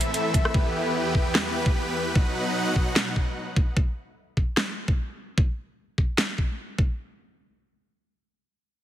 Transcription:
Already playing: A2 E3 C4 A4 E5 B5
0.01 closed hi-hat
0.14 closed hi-hat
0.34 kick, closed hi-hat
0.45 cross-stick
0.54 E2 B3 G4 B4, kick
1.15 kick
1.35 snare
1.66 kick
2.15 B2 F#3 D#4 F#5, kick
2.76 kick
2.96 snare
3.16 kick
3.56 kick
3.77 kick
4.37 kick
4.57 snare
4.88 kick
5.38 kick
5.98 kick
6.18 snare
6.38 kick
6.79 kick

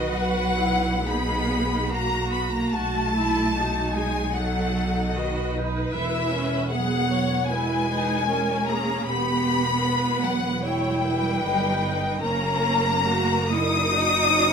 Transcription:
Already playing: B1 D#3 F#4 B4 D#5
0.12 F#3 F#4 F#5
0.60 E4
1.05 B3 D#4 G#4 B5
1.91 A#3 F#4 A#5
2.32 B3 B5
2.52 A#3 A#5
2.72 B1 A3 F#4 A5
3.15 E4
3.55 D#4 F#4
3.94 G#3 G#4 G#5
4.33 F#3 D#4 A4 F#5
5.12 D#3 F#4 D#5
5.17 B4
5.56 D#4
5.92 E1 E3 E4 E5
6.33 C#4
6.71 F#3 B3 G#4 F#5
7.11 C#5
7.48 G#3 E4 B4 G#5
7.89 D#4
8.29 C#4 A#4
8.68 A#3 G#4 A#5
9.07 E1 B3 G4 B5
9.84 B4
10.24 F#3 F#5
10.64 G3 E4 C#5 G5
11.04 B4
11.43 G1 D#4
12.20 F#1 A#3 C#4 A#4 A#5
13.05 F#4 A#4
13.49 D#4 E4 D#6
13.90 D#4 F#4
14.31 C#4

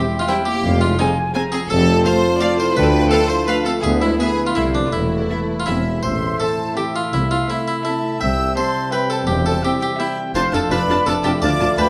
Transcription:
Already playing: E3 C4 G4 C5 E5
0.01 G5
0.10 C6
0.18 G#3 F4 G5
0.26 G3 C4 E4 G4 C5 G5
0.37 G4
0.45 A#3 E4 G4
0.54 C4
0.62 F1 F2 F3 F5
0.71 C4
0.80 G#3 F4 G#4
0.89 C5
0.98 G3 C4 D#4 G#4 C5 G#5
1.07 G#5
1.15 C6
1.24 G#5
1.33 C4 G#4 C5 G#5 A#5
1.37 C4
1.41 G#4
1.50 C4 F4 G#4
1.60 C4
1.68 F1 F2 F3 C4 F4 A4 A5
1.77 F4
1.87 A4
1.95 C5
2.05 A3 F4 C5 F5
2.13 A5
2.31 A5
2.40 A3 F4 C5 D5 F5
2.49 A4
2.58 C4 E4 C5
2.67 F4
2.75 D2 D3 A3 D4 B4 G5
2.82 B3 A4
2.90 B4
2.94 F4
3.02 A4
3.10 A3 D4 A4 B4 F5
3.20 F5
3.28 E4 C5 A5
3.38 F5
3.46 A3 D4 B4 F5
3.56 F4
3.64 A3 C4 A4
3.75 B3
3.82 D2 D3 B3 E4 G#4 E5
3.93 B3
4.01 G#3 E4
4.10 B4
4.19 B3 E4 G#4 B4 E5
4.28 E5
4.45 A3 F4 E5
4.55 C2 C3 A3 C4 E4 A4 C5 E5
4.65 C4
4.73 F3 D4 E4
4.83 F4 A4
4.92 E1 E2 E3 A3 E4 B4
5.02 E4
5.11 A4
5.21 B4
5.29 B3 A4 E5
5.40 A5
5.50 A3 B5
5.58 F4 A5
5.66 E1 E2 E3 B3 C4 E4 G#4 E5
5.78 E4
5.86 G#4
5.96 B3 B4
6.03 A1 A2 A3 E4 C5 E5 C6
6.25 E4
6.40 E3 C4 A4 C5 E5 A5
6.60 C4
6.76 E3 C4 G4 A4 E5 G5
6.95 E4 F4 F5
7.12 C2 C3 E4 E5
7.31 E4 F4 F5
7.49 A3 C4 E4 A4 E5
7.67 C4 E4 E5
7.84 A3 C4 E4 A4 E5 A5
8.04 E4
8.20 C2 C3 G3 C4 E5 G5 E6
8.39 G4
8.56 G3 C4 G4 C5 E5 A5 C6
8.76 C4
8.91 G3 C4 G4 B4 E5 G5 B5
9.10 G4 A4 A5
9.27 E1 E2 E3 G4 G5
9.46 G4 A4 A5
9.63 C4 E4 G4 E5 G5
9.81 G4 G5
9.98 C4 E4 G4 E5 G5
10.34 F1 F2 F3 A3 D4 F4 C5 F5 A5 C6
10.51 F1 F2 D4 F4 A4 A5
10.70 F1 F2 C4 D4 F4 B4 D5 A5 B5
10.88 F1 F2 D4 F4 A5
11.06 F1 F2 C4 D4 F4 A4 A5
11.23 F1 F2 D4 F4 G4 G5 A5
11.41 D2 D3 D4 F4 D5 F5 A5 D6
11.60 D2 D4 F4 A5
11.77 D2 A3 D4 F4 B4 G5 A5 B5

